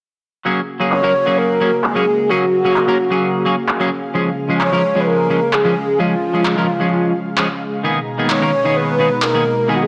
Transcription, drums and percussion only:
0.92 clap
1.84 clap
2.76 clap
3.69 clap
4.61 clap
5.53 clap
6.45 clap
7.38 clap
8.30 clap
9.22 clap

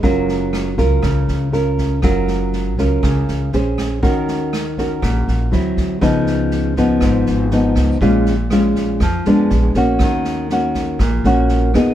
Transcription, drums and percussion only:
0.03 kick, snare
0.28 snare
0.53 cross-stick, snare
0.78 kick, snare
1.03 kick, cross-stick, snare
1.28 snare
1.53 snare
1.78 kick, snare
2.02 kick, cross-stick, snare
2.27 snare
2.53 snare
2.78 kick, snare
3.03 kick, cross-stick, snare
3.28 snare
3.52 snare
3.78 kick, cross-stick, snare
4.03 kick, snare
4.28 snare
4.53 cross-stick, snare
4.78 kick, snare
5.02 kick, cross-stick, snare
5.28 snare
5.52 snare
5.77 kick, snare
6.02 kick, cross-stick, snare
6.26 snare
6.51 snare
6.76 kick, snare
7.01 kick, cross-stick, snare
7.26 snare
7.51 snare
7.76 kick, cross-stick, snare
8.01 kick, snare
8.26 snare
8.50 cross-stick, snare
8.75 kick, snare
9.00 kick, cross-stick, snare
9.25 snare
9.50 snare
9.74 kick, snare
9.99 kick, cross-stick, snare
10.24 snare
10.50 snare
10.74 kick, snare
10.99 kick, cross-stick, snare
11.24 snare
11.49 snare
11.74 kick, cross-stick, snare

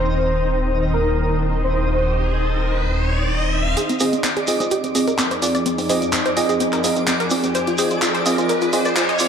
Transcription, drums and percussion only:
3.77 closed hi-hat, shekere
3.89 closed hi-hat, shekere
4.00 open hi-hat, shekere
4.13 closed hi-hat, shekere
4.24 clap, closed hi-hat, shekere
4.37 closed hi-hat, shekere
4.47 open hi-hat, shekere
4.60 closed hi-hat, shekere
4.71 closed hi-hat, shekere
4.84 closed hi-hat, shekere
4.95 open hi-hat, shekere
5.08 closed hi-hat, shekere
5.18 clap, closed hi-hat, shekere
5.31 closed hi-hat, shekere
5.42 open hi-hat, shekere
5.55 closed hi-hat, shekere
5.66 closed hi-hat, shekere
5.78 open hi-hat, shekere
5.89 open hi-hat, shekere
6.02 closed hi-hat, shekere
6.12 clap, closed hi-hat, shekere
6.25 closed hi-hat, shekere
6.37 open hi-hat, shekere
6.49 closed hi-hat, shekere
6.60 closed hi-hat, shekere
6.73 clap, closed hi-hat, shekere
6.84 open hi-hat, shekere
6.96 closed hi-hat, shekere
7.07 clap, closed hi-hat, shekere
7.20 closed hi-hat, shekere
7.30 open hi-hat, shekere
7.43 closed hi-hat, shekere
7.55 closed hi-hat, shekere
7.67 closed hi-hat, shekere
7.78 open hi-hat, shekere
7.90 closed hi-hat, shekere
8.02 clap, closed hi-hat, shekere
8.15 closed hi-hat, shekere
8.26 open hi-hat, shekere
8.38 closed hi-hat, shekere
8.49 closed hi-hat, shekere
8.61 closed hi-hat, shekere
8.73 open hi-hat, shekere
8.85 closed hi-hat, shekere
8.96 clap, closed hi-hat, shekere
9.09 closed hi-hat, shekere
9.19 open hi-hat, shekere

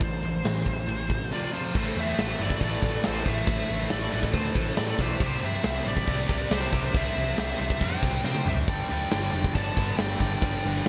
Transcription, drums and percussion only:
0.01 kick, ride
0.23 ride
0.45 snare, ride
0.66 kick, ride
0.89 ride
1.10 kick, ride
1.23 snare
1.75 kick, crash
1.97 crash
2.19 snare, crash
2.40 crash
2.50 kick
2.60 kick, crash
2.82 kick, crash
3.04 snare, crash
3.26 kick, crash
3.46 kick, crash
3.69 crash
3.80 snare
3.90 snare, crash
4.12 crash
4.23 kick
4.33 kick, crash
4.55 kick, crash
4.77 snare, crash
4.99 kick, crash
5.20 kick, crash
5.42 crash
5.64 snare, crash
5.86 crash
5.97 kick
6.08 kick, crash
6.29 kick, crash
6.51 snare, crash
6.73 kick, crash
6.95 kick, crash
7.16 crash
7.38 snare, crash
7.59 crash
7.70 kick
7.81 kick, crash
8.03 kick, crash
8.24 snare
8.35 high tom
8.46 mid tom
8.57 floor tom
8.68 kick, crash
8.90 crash
9.01 snare
9.11 snare, crash
9.34 crash
9.44 kick
9.55 kick, crash
9.77 kick, crash
9.98 snare, crash
10.20 kick, crash
10.42 kick, crash
10.64 crash
10.75 snare

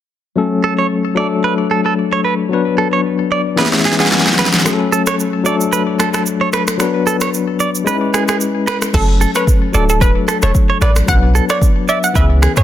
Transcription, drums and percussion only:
3.58 snare
3.66 snare
3.73 snare
3.79 snare
3.85 snare
3.93 snare
4.00 snare
4.06 snare
4.12 snare
4.19 snare
4.27 snare
4.33 snare
4.39 snare
4.46 snare
4.53 snare
4.60 snare
4.66 finger snap, cross-stick, shaker
4.93 shaker
5.07 finger snap, cross-stick, shaker
5.20 shaker
5.46 shaker
5.61 shaker
5.73 shaker
6.00 finger snap, cross-stick, shaker
6.14 finger snap, cross-stick, shaker
6.26 shaker
6.53 finger snap, cross-stick, shaker
6.68 finger snap, cross-stick, shaker
6.80 finger snap, cross-stick, shaker
7.07 shaker
7.21 finger snap, cross-stick, shaker
7.34 shaker
7.60 shaker
7.75 shaker
7.87 shaker
8.14 finger snap, cross-stick, shaker
8.28 finger snap, cross-stick, shaker
8.41 shaker
8.67 finger snap, cross-stick, shaker
8.82 finger snap, cross-stick, shaker
8.94 finger snap, kick, cross-stick, crash, shaker
9.21 shaker
9.35 finger snap, cross-stick, shaker
9.47 kick, shaker
9.74 shaker
9.89 shaker
10.01 kick, shaker
10.28 finger snap, cross-stick, shaker
10.42 finger snap, cross-stick, shaker
10.55 kick, shaker
10.82 finger snap, cross-stick, shaker
10.96 finger snap, cross-stick, shaker
11.08 finger snap, kick, cross-stick, shaker
11.35 shaker
11.49 finger snap, cross-stick, shaker
11.62 kick, shaker
11.88 shaker
12.04 shaker
12.15 kick, shaker
12.42 finger snap, cross-stick, shaker
12.57 finger snap, cross-stick, shaker

